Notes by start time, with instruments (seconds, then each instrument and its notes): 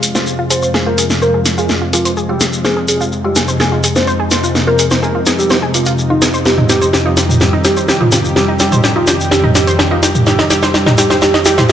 Already playing: synth drone F2 C3, analog synth pad C3 F3 G#3 F4
0.03 open hi-hat, shekere
0.15 synth pluck F4, synth bell C5, soft synth lead C5, snare, shekere
0.27 shekere
0.39 synth pluck F4
0.50 synth pluck G#4, soft synth lead C5, synth bell C5, open hi-hat, shekere
0.62 synth pluck C5, shekere
0.74 synth pluck G#4, snare, shekere
0.86 synth pluck F4, soft synth lead A#4, synth bell A#4
0.98 synth pluck G#4, open hi-hat, shekere
1.10 snare, shekere
1.22 soft synth lead A#4, synth bell A#4, synth pluck C5, shekere
1.34 synth pluck G#4
1.46 snare, open hi-hat, shekere
1.58 synth pluck F4, soft synth lead G#4, synth bell G#4, shekere
1.69 snare, shekere
1.82 synth pluck F4
1.93 soft synth lead F4, synth bell F4, synth pluck G#4, open hi-hat, shekere
2.05 synth pluck C5, open hi-hat, shekere
2.17 synth pluck G#4, shekere
2.29 synth pluck F4, soft synth lead G4, synth bell G4
2.41 synth pluck G#4, snare, open hi-hat, shekere
2.53 shekere
2.65 analog synth pad D#4, soft synth lead G#4, synth bell G#4, synth pluck C5, snare, shekere
2.77 synth pluck G#4
2.88 soft synth lead G#4, synth bell G#4, open hi-hat, shekere
3.01 synth pluck F4, shekere
3.12 shekere
3.24 synth pluck F4, soft synth lead G4, synth bell G4
3.36 synth pluck G#4, snare, open hi-hat, shekere
3.48 synth pluck C5, shekere
3.60 synth pluck G#4, soft synth lead G#4, synth bell G#4, snare, shekere
3.72 synth pluck F4
3.84 synth pluck G#4, open hi-hat, shekere
3.96 soft synth lead C5, synth bell C5, snare, shekere
4.07 synth pluck C5, shekere
4.20 synth pluck G#4
4.31 synth bell C5, soft synth lead C5, snare, open hi-hat, shekere
4.44 synth pluck F4, shekere
4.55 snare, shekere
4.67 synth pluck F4, soft synth lead A#4, synth bell A#4
4.79 synth pluck G#4, open hi-hat, shekere
4.91 synth pluck C5, snare, shekere
5.03 synth pluck G#4, soft synth lead A#4, synth bell A#4, shekere
5.15 synth pluck F4
5.26 synth pluck G#4, snare, open hi-hat, shekere
5.39 soft synth lead G4, synth bell G4, shekere
5.50 synth pluck C5, snare, shekere
5.63 synth pluck G#4
5.74 soft synth lead F4, synth bell F4, open hi-hat, shekere
5.85 synth pluck F4, open hi-hat, shekere
5.98 shekere
6.10 soft synth lead D#4, synth bell D#4, synth pluck F4
6.22 synth pluck G#4, snare, open hi-hat, shekere
6.34 synth pluck C5, shekere
6.45 analog synth pad F2 D#3 G3 G4, synth bell G4, soft synth lead G4, snare, shekere
6.58 synth pluck D#4, mid tom
6.69 synth pluck G4, soft synth lead G4, synth bell G4, snare, open hi-hat, shekere
6.82 synth pluck C5, shekere
6.93 synth pluck G4, snare, shekere
7.05 synth pluck D#4, synth bell F4, soft synth lead F4
7.17 synth pluck G4, snare, open hi-hat, shekere
7.29 mid tom, shekere
7.41 soft synth lead G4, synth bell G4, snare, shekere
7.53 synth pluck D#4
7.64 soft synth lead G4, synth bell G4, synth pluck G4, snare, open hi-hat, shekere
7.77 synth pluck C5, shekere
7.88 synth pluck G4, snare, shekere
8.01 synth pluck D#4, synth bell F4, soft synth lead F4, mid tom
8.12 synth pluck G4, snare, open hi-hat, shekere
8.25 shekere
8.36 soft synth lead G4, synth bell G4, snare, shekere
8.48 synth pluck D#4
8.60 soft synth lead G4, synth bell G4, synth pluck G4, snare, open hi-hat, shekere
8.72 synth pluck C5, mid tom, shekere
8.84 synth pluck G4, snare, shekere
8.96 synth pluck D#4, soft synth lead F4, synth bell F4
9.07 synth pluck G4, snare, open hi-hat, shekere
9.20 shekere
9.31 soft synth lead G4, synth bell G4, snare, shekere
9.44 synth pluck D#4, mid tom
9.55 soft synth lead G4, synth bell G4, synth pluck G4, snare, open hi-hat, shekere
9.67 synth pluck C5, open hi-hat, shekere
9.79 synth pluck G4, snare, shekere
9.91 synth pluck D#4, synth bell F4, soft synth lead F4
10.03 synth pluck G4, snare, open hi-hat, shekere
10.15 mid tom, shekere
10.26 soft synth lead G4, synth bell G4, snare, shekere
10.39 synth pluck D#4, snare
10.50 synth bell G4, soft synth lead G4, synth pluck G4, snare, open hi-hat, shekere
10.63 synth pluck C5, snare, shekere
10.74 synth bell G4, soft synth lead G4, snare, shekere
10.86 synth pluck D#4, snare, mid tom
10.98 soft synth lead G4, synth pluck G4, synth bell G4, snare, open hi-hat, shekere
11.10 synth pluck C5, snare, shekere
11.22 synth bell G4, soft synth lead G4, snare, shekere
11.34 synth pluck D#4, snare
11.45 synth pluck G4, soft synth lead G4, synth bell G4, snare, open hi-hat, shekere
11.58 synth pluck C5, snare, mid tom, shekere